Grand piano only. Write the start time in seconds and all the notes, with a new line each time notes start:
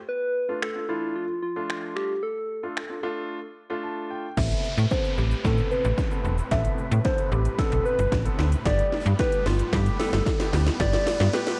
0.49 A3 D4 F4
0.75 D4 F4
0.89 A3 D4 F4
1.56 A3 D4 F4
2.63 A3 D4 F4
2.90 D4 F4
3.03 A3 D4 F4
3.70 A3 D4 F4
3.83 A5
4.11 G5
4.37 B3 C4 A4
4.91 B3 C4 A4
5.44 B3 C4 A4
6.11 B3 C4 A4
6.51 B3 C4 A4
7.05 B3 C4 A4
7.58 B3 C4 A4
8.25 B3 C4 A4
8.65 A3 B3 G4
9.19 A3 B3 G4
9.73 A3 B3 G4
10.40 A3 B3 G4
10.80 A3 B3 G4
11.33 A3 B3 G4